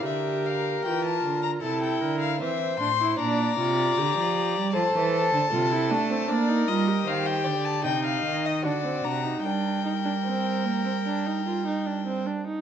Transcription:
X:1
M:4/4
L:1/16
Q:1/4=77
K:Bb
V:1 name="Violin"
=e2 f2 g a2 b a g2 f e2 c'2 | b8 a8 | [K:Gm] d2 e2 f g2 a g f2 e d2 b2 | g12- g2 z2 |]
V:2 name="Violin"
B8 A2 B2 c4 | d8 c4 A4 | [K:Gm] B4 c2 d2 e4 ^F4 | B12- B2 z2 |]
V:3 name="Viola"
G4 F4 =E4 C2 D E | D2 F2 G4 A4 F =E D C | [K:Gm] D E F G4- G E4 D C D E | D2 E D C2 B, C D E F E D C D E |]
V:4 name="Cello" clef=bass
D,4 =E,2 D,2 C,2 D,2 E,2 A,,2 | B,,2 C,2 D, F,2 G, F, =E,2 D, C,2 A,2 | [K:Gm] B,2 G,2 E,2 D,2 C,2 E,2 D,2 C,2 | G,12- G,2 z2 |]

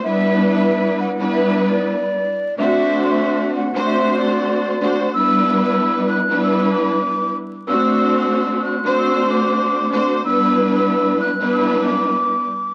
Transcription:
X:1
M:4/4
L:1/16
Q:"Swing 16ths" 1/4=94
K:Em
V:1 name="Flute"
e3 e3 f2 e2 d6 | e3 e3 f2 e2 d6 | e'3 e'3 f'2 e'2 d'6 | e'3 e'3 f'2 e'2 d'6 |
e'3 e'3 f'2 e'2 d'6 |]
V:2 name="String section"
[G,B,DEB]6 z [G,B,DEB]6 z3 | [A,CDFc]6 z [A,CDFc]6 z [A,CDFc]2 | [G,B,DEB]6 z [G,B,DEB]6 z3 | [A,CDFc]6 z [A,CDFc]6 z [A,CDFc]2 |
[G,B,DEB]6 z [G,B,DEB]6 z3 |]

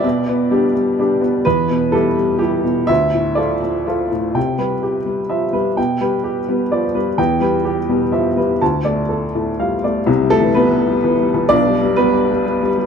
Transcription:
X:1
M:3/4
L:1/8
Q:1/4=126
K:C
V:1 name="Upright piano"
d6 | B2 A2 G2 | e2 d2 z2 | g B G2 e B |
g B G B, d B | g B G B,, e B | a d A A,, f d | z [A,A] [B,B]4 |
[Dd]2 [B,B]3 z |]
V:2 name="Upright piano" clef=bass
B,, B, [G,DG] G, [G,DG] B, | E,, B,, [G,EG] G, [G,E] B,, | D,, A,, [F,FA] F, [F,FA] A,, | C, G,2 G, F, G, |
B,, G,2 G, F, G, | E,, G,2 G, F, G, | D,, A,2 A, G, A, | (3[C,,C,] G, E, (3G, E, G, (3E, G, E, |
(3[B,,,B,,] G, G, (3G, G, G, (3G, G, G, |]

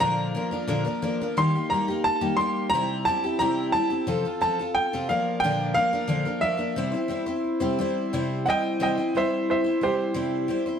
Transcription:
X:1
M:4/4
L:1/16
Q:1/4=89
K:Cmix
V:1 name="Grand piano"
b8 c'2 b2 a2 c'2 | b2 a2 b2 a4 a2 g2 f2 | g2 f4 e6 z4 | z2 [_e^fg]2 [eg]2 [c=e]2 [ce]2 [Gc]2 z4 |]
V:2 name="Twelve-string acoustic guitar"
[B,,D,F,B,DB]2 [F,B,DB] [F,B,DB] [B,,D,F,B,DB] [F,B,DB] [F,B,DB] [F,B,DB] [_E,G,B,_EG] [B,EG] [G,B,EG] [B,EG]2 [E,G,B,EG] [G,B,EG]2 | [C,G,CEG]2 [G,CEG] [CEG] [C,G,CEG]2 [G,CEG] [CEG] [C,F,CFA] [CFA] [F,CFA] [CFA]2 [C,F,CFA] [F,B,DB]2 | [B,,D,F,B,DB]2 [F,B,DB] [F,B,DB] [B,,D,F,B,DB] [F,B,DB] [F,B,DB] [F,B,DB] [C,G,CEc] [CEc] [G,CEc] [CEc]2 [C,G,CEc] [G,CEc]2 | [C,G,CEc]2 [G,CEc]2 [C,G,CEc] [CEc] [G,CEc]3 [CEc] [G,CEc]2 [C,G,CEc]2 [G,CEc] [CEc] |]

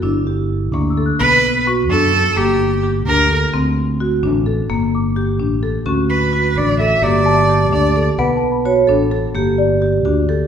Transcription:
X:1
M:5/8
L:1/16
Q:1/4=129
K:Glyd
V:1 name="Celesta"
z6 c' e' f'2- | f'4 c'6- | c'2 z8 | z8 z2 |
z2 d'8 | c'8- c'2- | c'2 a8 | f a b8- |
b2 d8 |]
V:2 name="Cello"
z8 z2 | B4 z2 A4 | G4 z2 _B3 z | z8 z2 |
z8 z2 | z2 B4 d2 e2 | d6 d3 z | z8 z2 |
z8 z2 |]
V:3 name="Vibraphone"
E6 D4 | z8 z2 | z8 z2 | z8 z2 |
z8 z2 | F8- F2 | G8- G2 | B4 c2 A4 |
G6 F2 G2 |]
V:4 name="Marimba"
D2 G4 _B,2 A2 | B,4 F2 D2 A2 | _B,4 G2 D2 A2 | =C4 F2 D2 A2 |
_B,4 G2 D2 A2 | C4 F2 D2 A2 | _B,4 G2 D2 A2 | B,4 F2 D2 A2 |
_B,4 G2 D2 A2 |]
V:5 name="Fingered electric bass" clef=bass
G,,,6 D,,4 | B,,,6 F,,4 | G,,,6 D,,4 | D,,6 A,,,4 |
G,,,6 A,,,4 | D,,6 A,,,4 | G,,,6 D,,4 | B,,,6 A,,,4 |
G,,,6 D,,4 |]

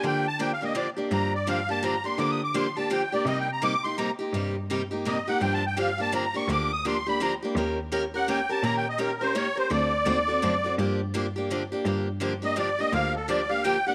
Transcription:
X:1
M:3/4
L:1/16
Q:"Swing" 1/4=168
K:Gm
V:1 name="Accordion"
g2 a2 (3g2 f2 e2 d2 z2 | b2 d2 f2 a2 b2 c'2 | (3d'2 e'2 d'2 c'2 a2 g2 d2 | (3e2 g2 b2 d'2 c'2 b2 z2 |
z8 e2 ^f2 | (3g2 a2 g2 f2 a2 b2 ^c'2 | d'2 e'2 c'2 =b2 _b2 z2 | z6 ^f2 g2 a2 |
(3b2 g2 e2 B2 c2 _d2 c2 | d12 | z12 | z6 e2 d2 e2 |
f2 A2 d2 f2 g2 ^f2 |]
V:2 name="Steel-string acoustic guitar"
[D,F,B,DG]2 z2 [D,F,B,DG] z [B,DG]2 [D,F,B,DG] z [B,DG]2 | [D,F,B,DG]2 z2 [D,F,B,DG] z [B,DG]2 [D,F,B,DG] z [B,DG]2 | [D,F,B,DG]2 z2 [D,F,B,DG] z [B,DG]2 [D,F,B,DG] z [B,DG]2 | [C,G,B,EG]2 z2 [C,G,B,EG] z [B,EG]2 [C,G,B,EG] z [B,EG]2 |
[C,G,B,EG]2 z2 [C,G,B,EG] z [B,EG]2 [C,G,B,EG] z [B,EG]2 | [D,F,B,DG]2 z2 [D,F,B,DG] z [B,DG]2 [D,F,B,DG] z [B,DG]2 | [D,F,B,DG]2 z2 [D,F,B,DG] z [B,DG]2 [D,F,B,DG] z [B,DG]2 | [E,B,_DGB]2 z2 [E,B,DGB] z [DGB]2 [E,B,DGB] z [DGB]2 |
[E,B,_DGB]2 z2 [E,B,DGB] z [DGB]2 [E,B,DGB] z [DGB]2 | [D,A,C^FA]2 z2 [D,A,CFA] z [CFA]2 [D,A,CFA] z [CFA]2 | [D,F,B,DG]2 z2 [D,F,B,DG] z [B,DG]2 [D,F,B,DG] z [B,DG]2 | [D,F,B,DG]2 z2 [D,F,B,DG] z [B,DG]2 [D,F,B,DG] z [B,DG]2 |
[D,F,B,DG]2 z2 [D,F,B,DG] z [B,DG]2 [D,F,B,DG] z [B,DG]2 |]
V:3 name="Cello" clef=bass
D,12 | G,,12 | D,12 | C,12 |
G,,12 | G,,12 | D,,12 | E,,12 |
B,,12 | D,,4 E,,4 ^F,,4 | G,,12 | G,,12 |
D,,12 |]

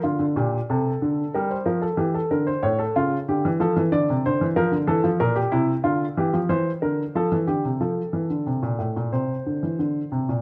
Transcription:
X:1
M:4/4
L:1/16
Q:1/4=93
K:Dm
V:1 name="Grand piano"
F2 G2 A4 B c B A G A B c | ^c A F2 G2 A2 d2 =c2 B2 A2 | [K:Gdor] B G E2 F2 G2 c2 B2 A2 G2 | A8 c6 z2 |]
V:2 name="Grand piano" clef=bass
D, D, B,,2 C,2 D,2 G,2 F,2 E,2 D,2 | A,,2 ^C,2 D, E, F, E, D, =C, D, E, F, D, E, F, | [K:Gdor] B,,2 C,2 D,2 E, F, E,2 D,2 F, E, D, C, | F,2 E, D, C, B,, A,, B,, C,2 D, E, D,2 C, B,, |]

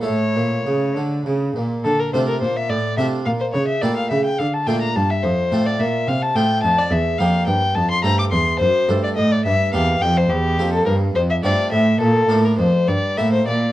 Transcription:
X:1
M:6/8
L:1/16
Q:3/8=71
K:Dm
V:1 name="Violin"
^c6 z6 | A B c B c e d2 e2 f c | ^c e d f e g f a g b a e | c3 d e2 f a g2 a d |
e2 f2 g2 a c' b d' c'2 | c3 d _e d =e2 f2 g c | G3 A B2 c e d2 e2 | A3 B c2 d2 e c d2 |]
V:2 name="Harpsichord"
[A,E]12 | z2 [A,DF]6 [A,DF]4 | z2 [A,EG]4 z2 [A,DF]4 | z2 [A,CF]6 [A,CF]4 |
z2 [B,CG]4 z2 [A,CA]4 | z2 [A,DA]4 z2 [B,DG]4 | z2 [B,CG]4 z2 [A,CF]4 | z2 [B,DF]4 z2 [B,E]4 |]
V:3 name="Harpsichord" clef=bass
A,,2 B,,2 ^C,2 D,2 C,2 B,,2 | D,2 C,2 B,,2 A,,2 C,2 B,,2 | ^C,2 B,,2 C,2 D,2 B,,2 G,,2 | F,,2 A,,2 B,,2 C,2 A,,2 F,,2 |
E,,2 F,,2 G,,2 F,,2 G,,2 E,,2 | ^F,,2 G,,2 A,,2 G,,2 E,,2 =F,,2 | E,,2 F,,2 G,,2 F,,2 G,,2 A,,2 | B,,2 A,,2 F,,2 G,,2 A,,2 B,,2 |]
V:4 name="Cello" clef=bass
A,,2 B,,2 ^C,2 D,2 C,2 B,,2 | D,2 C,2 B,,2 A,,2 C,2 B,,2 | ^C,2 B,,2 C,2 D,2 B,,2 G,,2 | F,,2 A,,2 B,,2 C,2 A,,2 F,,2 |
E,,2 F,,2 G,,2 F,,2 G,,2 E,,2 | ^F,,2 G,,2 A,,2 G,,2 E,,2 =F,,2 | E,,2 F,,2 G,,2 F,,2 G,,2 A,,2 | B,,2 A,,2 F,,2 G,,2 A,,2 B,,2 |]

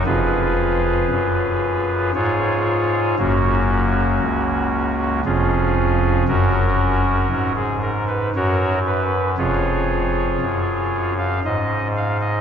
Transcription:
X:1
M:3/4
L:1/16
Q:1/4=58
K:F#
V:1 name="Pipe organ"
[EGB]8 [EGc]4 | [A,CF]8 [CEG]4 | [CFA]4- [CFA] G A B [FAc]2 B2 | [EGc]6- [EGc] e d2 e d |]
V:2 name="Pipe organ" clef=bass
[E,,,E,,]4 F,,4 G,,4 | [F,,,F,,]4 C,,4 [E,,,E,,]4 | [F,,,F,,]4 G,,4 F,,4 | [E,,,E,,]4 F,,4 G,,4 |]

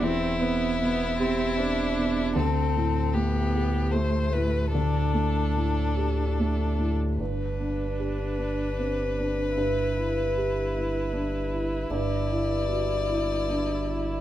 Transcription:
X:1
M:3/4
L:1/16
Q:1/4=76
K:G
V:1 name="Violin"
E12 | A4 G4 c2 B2 | A8- A3 z | B12- |
B12 | d12 |]
V:2 name="Felt piano"
[E,,B,,]2 C2 B,,2 G2 C2 B,,2 | D,,2 A,,2 A,2 G2 A,2 A,,2 | D,,2 A,2 A,,2 G2 A,2 A,,2 | G,,2 D2 G2 D2 C2 D2 |
G,,2 E2 G2 E2 D2 E2 | G,,2 E2 F2 E2 D2 E2 |]
V:3 name="Viola"
C2 B,2 B,2 C2 D4 | C4 B,4 A,4 | D8- D3 z | D12 |
E12- | E12 |]
V:4 name="Sub bass" clef=bass
E,,,12 | D,,12- | D,,12 | G,,,12- |
G,,,12 | G,,,12 |]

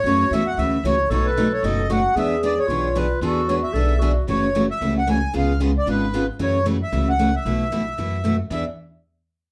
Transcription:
X:1
M:4/4
L:1/8
Q:"Swing" 1/4=227
K:Emix
V:1 name="Accordion"
c2 e f e2 c2 | c B2 c ^d2 f2 | e2 d c3 B2 | A2 c e4 z |
c3 e2 f g2 | ^e2 z d B3 z | c2 z e2 f2 e- | e6- e z |
e z6 z |]
V:2 name="Clarinet"
F6 z2 | A6 F2 | G4 =F4 | F4 A2 F2 |
z8 | z8 | z8 | z8 |
z8 |]
V:3 name="Steel-string acoustic guitar"
[C,E,A,CF] z [C,E,A,CF] z [C,E,A,CF] z [C,E,A,CF] z | [B,,F,A,^DF] z [B,,F,A,DF] z [B,,F,A,DF] z [B,,F,A,DF] z | [E,B,DG] z [E,B,DG] z [E,B,DG] z [E,B,DG] z | [E,B,DG] z [E,B,DG] z [E,B,DG] z [E,B,DG] z |
[C,E,A,CF] z [C,E,A,CF] z [C,E,A,CF] z [C,E,A,CF] z | [C,G,B,^EG] z [C,G,B,EG] z [C,G,B,EG] z [C,G,B,EG] z | [C,E,A,CF] z [C,E,A,CF] z [C,E,A,CF] z [C,E,A,CF] z | [B,,E,A,EF] z [B,,E,A,EF] z [B,,E,A,EF] z [B,,E,A,EF] z |
[E,B,DG] z6 z |]
V:4 name="Upright bass" clef=bass
F,,2 E,,2 D,,2 C,,2 | B,,,4 F,,,4 | E,,4 B,,,4 | E,,4 B,,,4 |
F,,,4 C,,4 | C,,4 G,,,4 | F,,4 C,,4 | B,,,4 F,,4 |
E,, z6 z |]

